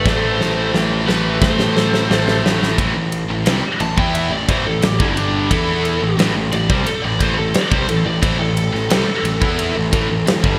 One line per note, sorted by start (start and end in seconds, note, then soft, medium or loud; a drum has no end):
0.05 0.38 A1 loud
0.05 1.06 A2 loud
0.05 1.07 E3 medium
0.05 1.06 A3 medium
0.05 0.71 A4 medium
0.05 0.71 C5 medium
0.05 kick loud
0.05 snare medium
0.41 0.73 A1 medium
0.41 snare medium
0.74 1.07 A1 medium
0.74 snare medium
1.07 1.41 A1 medium
1.07 2.08 A2 medium
1.07 2.09 E3 medium
1.07 2.08 A3 medium
1.07 1.39 G4 medium
1.07 1.42 B4 loud
1.07 snare medium
1.42 2.07 A1 medium
1.42 2.40 A4 loud
1.42 2.40 C5 loud
1.42 kick loud
1.42 snare medium
1.59 snare medium
1.77 snare medium
1.94 snare medium
2.10 2.43 A1 medium
2.10 2.76 A2 medium
2.10 2.77 E3 medium
2.10 2.77 A3 medium
2.10 snare loud
2.28 snare medium
2.43 2.77 A1 medium
2.43 2.77 A2 medium
2.43 2.76 E3 medium
2.43 2.76 A3 medium
2.43 snare loud
2.63 snare medium
2.78 2.94 A1 medium
2.78 2.94 A2 medium
2.78 2.94 E3 loud
2.78 kick loud
2.78 ride loud
2.96 3.27 A1 medium
2.96 3.23 A2 medium
2.96 3.23 E3 medium
3.12 ride medium
3.30 3.46 A1 medium
3.30 3.46 A2 medium
3.30 3.47 E3 medium
3.46 3.63 C2 medium
3.46 3.62 C3 loud
3.46 3.63 G3 medium
3.46 snare loud
3.46 ride loud
3.64 muted overdriven electric guitar stroke medium
3.64 muted picked electric bass stroke soft
3.64 muted distorted electric guitar stroke medium
3.80 3.96 A1 medium
3.80 3.98 A2 medium
3.80 3.97 E3 medium
3.80 3.97 A5 loud
3.80 ride medium
3.98 4.29 E2 medium
3.98 4.31 E3 medium
3.98 4.31 B3 medium
3.98 4.31 E4 loud
3.98 4.14 G5 medium
3.98 kick loud
4.14 4.31 E5 medium
4.14 ride loud
4.31 4.47 A1 medium
4.31 4.48 A2 medium
4.31 4.49 E3 medium
4.31 4.48 D5 medium
4.49 4.64 A1 loud
4.49 4.65 A2 loud
4.49 4.65 E3 loud
4.49 4.65 C5 medium
4.49 kick medium
4.49 ride medium
4.66 4.82 A1 medium
4.66 4.82 A2 medium
4.66 4.83 E3 medium
4.66 4.82 A4 loud
4.82 4.99 A1 medium
4.82 5.00 A2 medium
4.82 5.00 E3 medium
4.82 4.99 G4 loud
4.82 snare loud
4.82 ride medium
5.00 5.47 G1 loud
5.00 5.50 G2 medium
5.00 5.50 D3 loud
5.00 5.50 G3 loud
5.00 5.16 E4 medium
5.00 kick loud
5.16 5.49 D4 loud
5.16 ride medium
5.50 5.98 E2 medium
5.50 6.01 E3 medium
5.50 6.01 B3 loud
5.50 6.01 E4 loud
5.50 6.16 A4 loud
5.50 kick loud
5.50 ride medium
5.85 ride medium
6.02 6.17 A1 medium
6.02 6.18 A2 medium
6.02 6.18 E3 medium
6.17 6.34 A1 medium
6.17 6.35 A2 loud
6.17 6.35 E3 loud
6.17 snare loud
6.17 ride loud
6.35 6.51 A1 medium
6.35 6.52 A2 medium
6.35 6.52 E3 medium
6.52 6.68 A1 medium
6.52 6.69 A2 medium
6.52 6.70 E3 medium
6.52 6.69 D5 loud
6.52 ride medium
6.69 6.85 C2 loud
6.69 6.86 C3 medium
6.69 6.86 G3 loud
6.69 6.86 C5 loud
6.69 kick loud
6.86 7.03 A4 loud
6.86 muted overdriven electric guitar stroke medium
6.86 muted distorted electric guitar stroke medium
6.86 muted picked electric bass stroke soft
6.86 ride loud
7.02 7.19 A1 medium
7.02 7.20 A2 medium
7.02 7.21 E3 medium
7.02 7.19 D5 loud
7.19 7.36 A1 loud
7.19 7.37 A2 loud
7.19 7.37 E3 loud
7.19 7.36 C5 medium
7.19 kick loud
7.19 ride medium
7.37 7.54 A1 medium
7.37 7.54 A2 medium
7.37 7.55 E3 medium
7.37 7.54 A4 loud
7.54 7.71 D5 loud
7.54 muted distorted electric guitar stroke medium
7.54 muted picked electric bass stroke soft
7.54 muted overdriven electric guitar stroke medium
7.54 snare loud
7.54 ride loud
7.70 7.88 C2 medium
7.70 7.87 C3 medium
7.70 7.87 G3 loud
7.70 7.88 C5 medium
7.70 kick loud
7.88 8.05 A1 medium
7.88 8.04 A2 medium
7.88 8.05 E3 medium
7.88 8.05 A4 loud
7.88 ride medium
8.06 8.21 A1 medium
8.06 8.21 A2 medium
8.06 8.22 E3 medium
8.06 8.22 D5 loud
8.22 8.38 A1 loud
8.22 8.37 A2 loud
8.22 8.38 E3 loud
8.22 8.39 C5 medium
8.22 kick loud
8.22 ride loud
8.39 8.71 A1 medium
8.39 8.66 A2 medium
8.39 8.66 E3 medium
8.39 8.56 A4 medium
8.57 10.57 A4 loud
8.57 ride medium
8.73 8.89 A1 medium
8.73 8.90 A2 medium
8.73 8.90 E3 medium
8.73 snare soft
8.90 9.06 C2 medium
8.90 9.06 C3 medium
8.90 9.06 G3 loud
8.90 snare loud
8.90 ride loud
9.07 muted overdriven electric guitar stroke medium
9.07 muted picked electric bass stroke soft
9.07 muted distorted electric guitar stroke medium
9.24 9.40 A1 medium
9.24 9.41 A2 medium
9.24 9.40 E3 medium
9.24 ride medium
9.41 9.73 E2 loud
9.41 9.74 E3 loud
9.41 9.75 B3 medium
9.41 9.75 E4 loud
9.41 kick loud
9.59 ride loud
9.75 9.91 A1 medium
9.75 9.92 A2 medium
9.75 9.93 E3 medium
9.93 10.08 A1 loud
9.93 10.09 A2 medium
9.93 10.09 E3 loud
9.93 kick loud
9.93 ride medium
10.10 10.25 A1 medium
10.10 10.26 A2 medium
10.10 10.26 E3 medium
10.27 10.42 A1 medium
10.27 10.43 A2 medium
10.27 10.44 E3 medium
10.27 snare loud
10.27 ride loud
10.43 10.59 G1 loud
10.43 10.59 G2 medium
10.43 10.59 D3 medium
10.43 10.59 G3 loud
10.43 kick loud